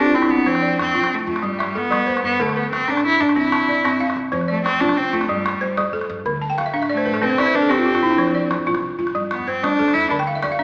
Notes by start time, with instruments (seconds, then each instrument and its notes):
Already playing: balafon C4 G4
0.00 upright bass G2, cello D4
0.06 balafon F4
0.14 cello C4, balafon E4, calabash thump
0.22 balafon D4, calabash click
0.30 upright bass C2, cello B3, balafon C4
0.38 balafon D4
0.46 upright bass F2, balafon F3 C5, cello C4, calabash thump
0.55 calabash click
0.62 balafon D5
0.79 upright bass F2, cello C4, calabash click
0.87 calabash thump
0.95 upright bass C2, balafon F4, calabash click
1.04 calabash click
1.14 cello A3
1.27 upright bass F2, cello A3, balafon F4, calabash thump
1.36 calabash click
1.42 upright bass G2, balafon G3, cello G3, calabash click
1.59 balafon E5, calabash click
1.75 upright bass G2, cello B3, balafon A4
1.91 upright bass D2, balafon G3, calabash click
2.07 balafon C5, calabash thump
2.17 calabash click
2.24 upright bass G2, cello B3
2.40 upright bass D2, balafon D3 A4, cello A3, calabash thump
2.49 calabash click
2.56 cello B3, balafon B4
2.72 upright bass D2, cello C4, calabash click
2.82 calabash thump
2.88 upright bass A1, balafon D4, cello D4
2.97 calabash click
3.06 cello E4
3.20 upright bass G2, balafon D4, cello D4, calabash thump, calabash click
3.29 calabash click
3.36 upright bass C2, balafon C4, cello E4
3.45 calabash click
3.52 balafon A5, calabash click
3.61 calabash thump
3.68 upright bass C2, balafon D5
3.84 upright bass G2, balafon C4, calabash click
4.00 balafon F5, calabash thump
4.10 calabash click
4.16 upright bass C2, calabash click
4.32 upright bass F2, balafon F3 C5, cello F3, calabash thump
4.41 calabash click
4.48 cello A3, balafon D5
4.65 upright bass F2, cello C4, calabash click
4.74 calabash thump
4.81 upright bass C2, cello D4, balafon F4, calabash click
4.89 calabash click
4.97 cello C4
5.13 upright bass C2, cello A3, balafon F4, calabash thump
5.21 calabash click
5.29 upright bass G2, cello G3, balafon G3, calabash click
5.46 calabash click
5.53 calabash thump
5.61 upright bass G2, balafon C5
5.77 upright bass D2, balafon G3, calabash click
5.93 balafon A4, calabash thump
6.01 calabash click
6.09 upright bass G2
6.25 upright bass D2, balafon D3, calabash thump
6.42 balafon A5
6.50 balafon G5
6.58 upright bass D2, balafon F5, calabash click
6.66 balafon E5, calabash thump
6.74 upright bass A1, balafon D4 F5, calabash click
6.82 balafon E5, calabash click
6.89 cello A3, balafon D5
6.97 balafon C5
7.06 upright bass A1, balafon B4, calabash thump
7.14 balafon A4, calabash click
7.22 upright bass C2, balafon C4 B4, cello C4, calabash click
7.30 balafon C5
7.38 cello E4, balafon D5, calabash click
7.46 balafon C5, calabash thump
7.54 upright bass C2, cello D4, balafon B4
7.62 balafon A4
7.69 upright bass G2, balafon C4 G4, cello C4, calabash click
7.78 balafon F4
7.86 balafon G4, calabash thump
7.95 balafon F4, calabash click
8.03 upright bass C2, balafon E4
8.11 balafon D4
8.18 upright bass F2, balafon F3 C5, calabash thump
8.27 calabash click
8.35 balafon D5
8.51 upright bass F2, calabash click
8.59 calabash thump
8.66 upright bass C2, balafon F4, calabash click
8.75 calabash click
8.99 upright bass C2, balafon F4, calabash thump
9.07 calabash click
9.15 upright bass G2, balafon G3, calabash click
9.31 cello B3, calabash click
9.39 calabash thump
9.47 upright bass G2, cello C4, balafon C5
9.63 upright bass D2, balafon G3, cello D4, calabash click
9.79 balafon A4, calabash thump
9.88 calabash click
9.94 upright bass E2, cello E4
10.09 upright bass D2, balafon D3, cello D4, calabash thump
10.19 balafon G5, calabash click
10.27 balafon F5
10.35 balafon E5
10.43 upright bass D2, balafon D5, calabash click
10.51 balafon F5, calabash thump
10.59 upright bass A1, balafon D4 E5